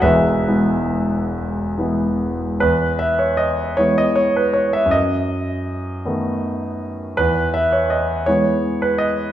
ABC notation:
X:1
M:6/8
L:1/16
Q:3/8=53
K:E
V:1 name="Grand piano"
[GBe]6 z6 | B2 e c d2 c d c B c e | d8- d2 z2 | B2 e c d2 c3 B d2 |]
V:2 name="Grand piano" clef=bass
[E,,,E,,]2 [E,G,B,]6 [E,G,B,]4 | E,,6 [E,G,B,]6 | F,,6 [D,A,B,]6 | E,,6 [E,G,B,]6 |]